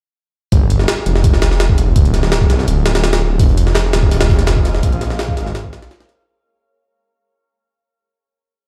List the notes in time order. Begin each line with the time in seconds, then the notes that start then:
0.52 G1, kick, closed hi-hat
0.70 closed hi-hat
0.79 snare
0.88 snare, closed hi-hat
1.06 F1, closed hi-hat
1.16 snare
1.24 kick, closed hi-hat
1.33 snare
1.42 snare, closed hi-hat
1.51 snare
1.60 snare, closed hi-hat
1.69 kick
1.78 closed hi-hat
1.96 D1, kick, closed hi-hat
2.05 closed hi-hat
2.14 snare, closed hi-hat
2.23 snare
2.32 snare, closed hi-hat
2.41 kick
2.50 C2, snare, closed hi-hat
2.59 snare
2.68 D1, closed hi-hat
2.86 snare, closed hi-hat
2.95 snare, closed hi-hat
3.04 snare, closed hi-hat
3.13 snare, closed hi-hat
3.39 F1 G#4 C5 D#5 F5, kick, closed hi-hat
3.49 closed hi-hat
3.57 closed hi-hat
3.67 snare
3.74 snare, closed hi-hat
3.93 D#1, snare, closed hi-hat
4.03 kick
4.11 D#1, snare, closed hi-hat
4.21 snare, closed hi-hat
4.29 F1, kick, snare, closed hi-hat
4.39 snare, closed hi-hat
4.47 snare, closed hi-hat
4.57 kick
4.65 snare, closed hi-hat
4.75 snare
4.83 A#1 A#4 C#5 F5, kick, closed hi-hat
4.92 closed hi-hat
5.01 snare, closed hi-hat
5.10 snare, closed hi-hat
5.19 snare, closed hi-hat
5.29 kick
5.37 G#1, snare, closed hi-hat
5.46 snare
5.55 snare, closed hi-hat
5.64 kick
5.73 A#1, snare, closed hi-hat
5.82 snare, closed hi-hat
5.90 snare, closed hi-hat
6.00 snare, closed hi-hat
6.09 snare, closed hi-hat
6.19 snare